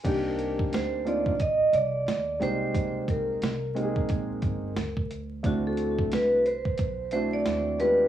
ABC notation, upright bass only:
X:1
M:4/4
L:1/8
Q:"Swing 16ths" 1/4=89
K:Cm
V:1 name="Upright bass" clef=bass
C,,2 D,,2 B,,, C,, E,, C,,- | C,,2 C,,2 B,,, G,,, D,,2 | D,,2 C,,2 =B,,,2 E,,2 |]